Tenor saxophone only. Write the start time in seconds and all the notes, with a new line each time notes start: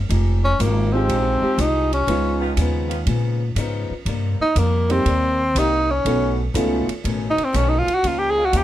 0.44 C#4
0.61 A#3
0.93 C4
1.61 D#4
1.93 C#4
4.42 D#4
4.59 A#3
4.92 C4
5.58 D#4
5.90 C#4
7.30 D#4
7.44 C4
7.56 C#4
7.68 D#4
7.79 F4
7.94 F#4
8.07 F4
8.19 G4
8.30 G#4
8.45 F#4
8.57 G4